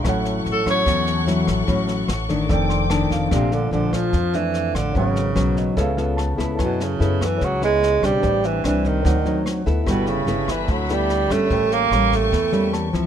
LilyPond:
<<
  \new Staff \with { instrumentName = "String section" } { \time 4/4 \key a \major \tempo 4 = 147 << { <fis'' cis'''>1~ | <fis'' cis'''>2 <g'' d'''>2 | r1 | r1 |
r1 | r1 | <e'' b''>1 | <g'' cis'''>1 | } \\ { a'1~ | a'1 | r1 | r1 |
r1 | r1 | a'1 | r1 | } >> }
  \new Staff \with { instrumentName = "Grand piano" } { \time 4/4 \key a \major << { r1 | r2 r8 c'''8 a''8 f''8 | r1 | r4. dis''8 e''8 eis''8 a''8 b''8 |
r1 | r1 | r1 | r2. a''8 e''8 | } \\ { <e' a' cis'' fis''>1~ | <e' a' cis'' fis''>2 <a' d'' g''>2 | <bes d' a' f''>1 | <cis' ais' b' fis''>2 <cis' a' b' eis''>2 |
<e' b' gis'' a''>1 | <d' b' c'' g''>2 <ees' c'' d'' fis''>2 | <e' a' b' g''>1 | <cis' a' bes' g''>1 | } >> }
  \new Staff \with { instrumentName = "Nylon-string guitar" } { \time 4/4 \key a \major << { <fis cis' e'>4. <fis cis' e'>4. <fis cis' e'>4 | <fis cis' e'>4 r8 <dis a d'>4. <ees a d'>4 | <f a d'>4 <f a d'>4 r8 <a d'>4. | <fis b cis'>4 <fis b cis'>4 <b eis' a'>8 <b eis' a'>4 <b e' a'>8~ |
<b e' a'>4 <b e' a'>4 r8 <b e'>4 <g c' d'>8~ | <g c' d'>4 <g c' d'>4 <fis c' ees'>8 <fis c' ees'>4 <b e' a'>8~ | <b e' a'>4 <b e' a'>4. <b e' a'>4 <g cis'>8~ | <g cis'>4 <g bes cis'>4 r8 <g bes cis'>4 <f c' e'>8 | } \\ { a,2 e2 | a,2 f,2 | bes,2 f,2 | gis,2 cis2 |
fis2 cis2 | a,2 r2 | g2 d2 | a,2 e2 | } >> }
  \new Staff \with { instrumentName = "Tenor saxophone" } { \clef bass \time 4/4 \key a \major r4 a'8 cis''4. r4 | r1 | c8 d8 d8 f4 e4 d8 | cis2 r2 |
b,8 cis4 e8 fis8 gis4 g8~ | g8 e8 e8 dis4. r4 | b,8 cis4 e8 fis8 g4 a8~ | a8 bes4 a4. r4 | }
  \new Staff \with { instrumentName = "Upright bass" } { \clef bass \time 4/4 \key a \major a,,4 a,,4 e,4. a,,8 | a,,4 a,,4 f,,4. f,,8 | bes,,4 bes,,4 f,4. a,,8 | gis,,4 b,,4 cis,4. cis,8 |
fis,4 fis,4 cis,4. b,,8 | a,,4 c,4 d,4. d,8 | g,,4 g,,4 d,4. g,,8 | a,,4 a,,4 e,4. cis,8 | }
  \new DrumStaff \with { instrumentName = "Drums" } \drummode { \time 4/4 <bd ss sn>8 sn8 sn8 <bd ss sn>8 <bd sn>8 sn8 sn8 <bd ss sn>8 | <bd sn>8 sn8 <ss sn>8 <bd sn>8 <bd sn>8 sn8 <ss sn>8 <bd sn>8 | <bd ss sn>8 sn8 sn8 <bd ss sn>8 <bd sn>8 sn8 sn8 <bd ss sn>8 | <bd sn>8 sn8 <ss sn>8 <bd sn>8 <bd sn>8 sn8 <ss sn>8 <bd sn>8 |
<bd ss sn>8 sn8 sn8 <bd ss sn>8 <bd sn>8 sn8 sn8 <bd ss sn>8 | <bd sn>8 sn8 <ss sn>8 <bd sn>8 <bd sn>8 sn8 <ss sn>8 <bd sn>8 | <bd ss sn>8 sn8 sn8 <bd ss sn>8 <bd sn>8 sn8 sn8 <bd ss sn>8 | <bd sn>8 sn8 <ss sn>8 <bd sn>8 <bd sn>8 sn8 <ss sn>8 <bd sn>8 | }
>>